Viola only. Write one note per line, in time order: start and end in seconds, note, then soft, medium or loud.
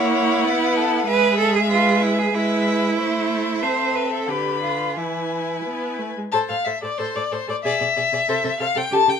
0.00 0.46 A#3 medium
0.44 1.06 B3 medium
1.07 2.31 G#3 medium
2.34 3.00 G#3 medium
2.98 3.64 A3 medium
3.63 4.30 C4 medium
4.29 4.98 D3 medium
4.97 5.58 E3 medium
5.65 6.00 B3 medium
5.99 6.16 A3 medium
6.17 6.23 G#3 soft
6.33 6.48 A4 medium
6.49 6.56 A4 soft
6.66 6.73 A4 soft
6.82 6.89 A4 soft
6.98 7.14 A4 medium
7.16 7.22 A4 soft
7.32 7.38 A4 soft
7.48 7.54 A4 soft
7.64 7.79 G#4 medium
7.80 7.87 G#4 soft
7.96 8.03 G#4 soft
8.12 8.18 G#4 soft
8.28 8.43 A4 medium
8.44 8.51 A4 soft
8.60 8.66 A4 medium
8.75 8.82 A4 medium
8.91 9.06 G4 medium
9.07 9.13 G4 soft